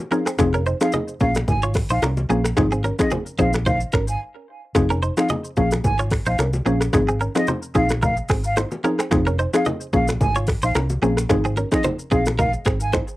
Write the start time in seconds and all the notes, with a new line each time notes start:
0.11 F3 C4 C#4 D#4 G#4 A#4, shaker
0.26 C4 G#4, finger snap, cross-stick, shaker
0.38 F1 F3 C4 D#4 G#4, finger snap, kick, cross-stick, low conga, shaker
0.54 C#4 A#4, shaker
0.66 D#4 C5, shaker
0.81 F3 C4 D#4 G#4 F5, finger snap, cross-stick, shaker
0.92 G#4 D#5, high bongo, low conga, shaker
1.08 shaker
1.20 A#1 F3 A#3 C#4 G#4 F5, kick, high bongo, shaker
1.35 finger snap, cross-stick, low bongo, shaker
1.48 G#1 G#5, kick, low conga, shaker
1.62 F4 C#5, shaker
1.74 finger snap, kick, cross-stick, open hi-hat, low bongo, shaker
1.90 A#1 D#4 C5 F5, shaker
2.02 C2 C#4 A#4, finger snap, cross-stick, high bongo, shaker
2.17 low bongo, shaker
2.29 A#1 F3 A#3 C4 C#4 G#4, shaker
2.44 finger snap, cross-stick, shaker
2.57 G#1 F3 C4 D#4 G#4, finger snap, kick, cross-stick, low conga, shaker
2.72 C4 G#4, shaker
2.84 C#4 A#4, low bongo, shaker
2.99 F3 C4 D#4 G#4 D#5, finger snap, kick, cross-stick, shaker
3.11 C4 G#4, high bongo, low conga, shaker
3.26 shaker
3.38 A#1 F3 C4 D#4 G#4 C5 F5, kick, high bongo, shaker
3.53 finger snap, cross-stick, low bongo, shaker
3.66 D#4 C5 F5, kick, low conga, shaker
3.81 shaker
3.92 G#1 C#4 A#4, finger snap, kick, cross-stick, low bongo, shaker
4.08 G#5, shaker
4.75 F1 F3 C4 D#4 G#4, finger snap, kick, cross-stick, low conga, shaker
4.90 C#4 A#4, shaker
5.03 D#4 C5, shaker
5.17 F3 C4 D#4 G#4 F5, finger snap, cross-stick, shaker
5.29 G#4 D#5, high bongo, low conga, shaker
5.44 shaker
5.57 A#1 F3 A#3 C#4 G#4 F5, kick, high bongo, shaker
5.71 finger snap, cross-stick, low bongo, shaker
5.84 G#1 G#5, kick, low conga, shaker
5.99 F4 C#5, shaker
6.11 finger snap, kick, cross-stick, open hi-hat, low bongo, shaker
6.26 A#1 D#4 C5 F5, shaker
6.39 C2 C#4 A#4, finger snap, cross-stick, high bongo, shaker
6.53 low bongo, shaker
6.66 A#1 F3 A#3 C4 C#4 G#4, shaker
6.81 finger snap, cross-stick, shaker
6.93 G#1 F3 C4 D#4 G#4, finger snap, kick, cross-stick, low conga, shaker
7.09 C4 G#4, shaker
7.21 C#4 A#4, shaker
7.35 F3 C4 D#4 G#4 D#5, finger snap, cross-stick, shaker
7.47 D#4 C5, high bongo, low conga, shaker
7.63 shaker
7.75 A#1 F3 C4 D#4 G#4 F5, kick, high bongo, shaker
7.89 finger snap, cross-stick, low bongo, shaker
8.02 D#4 A#4 F5, kick, low conga, shaker
8.17 shaker
8.29 G#1 C4 G#4, finger snap, kick, cross-stick, open hi-hat, low bongo, shaker
8.44 F5, shaker
8.57 D#4 C5, finger snap, cross-stick, high bongo, shaker
8.71 low bongo, shaker
8.84 F3 C4 C#4 D#4 G#4 A#4, shaker
8.99 C4 G#4, finger snap, cross-stick, shaker
9.11 F1 F3 C4 D#4 G#4, finger snap, kick, cross-stick, low conga, shaker
9.27 C#4 A#4, shaker
9.39 D#4 C5, shaker
9.53 F3 C4 D#4 G#4 F5, finger snap, cross-stick, shaker
9.65 G#4 D#5, high bongo, low conga, shaker
9.81 shaker
9.93 A#1 F3 A#3 C#4 G#4 F5, kick, high bongo, shaker
10.08 finger snap, cross-stick, low bongo, shaker
10.21 G#1 G#5, kick, low conga, shaker
10.35 F4 C#5, shaker
10.47 finger snap, kick, cross-stick, open hi-hat, low bongo, shaker
10.62 A#1 D#4 C5 F5, shaker
10.75 C2 C#4 A#4, finger snap, cross-stick, high bongo, shaker
10.90 low bongo, shaker
11.02 A#1 F3 A#3 C4 C#4 G#4, shaker
11.17 finger snap, cross-stick, shaker
11.29 G#1 F3 C4 D#4 G#4, finger snap, kick, cross-stick, low conga, shaker
11.45 C4 G#4, shaker
11.57 C#4 A#4, low bongo, shaker
11.72 F3 C4 D#4 G#4 D#5, finger snap, kick, cross-stick, shaker
11.83 D#4 C5, high bongo, low conga, shaker
11.99 shaker
12.11 A#1 F3 C4 D#4 G#4 F5, kick, high bongo, shaker
12.26 finger snap, cross-stick, low bongo, shaker
12.39 D#4 A#4 F5, kick, low conga, shaker
12.53 shaker
12.65 G#1 C4 G#4, finger snap, kick, cross-stick, low bongo, shaker
12.80 G#5, shaker
12.93 D#4 C5, finger snap, kick, cross-stick, high bongo, shaker
13.08 shaker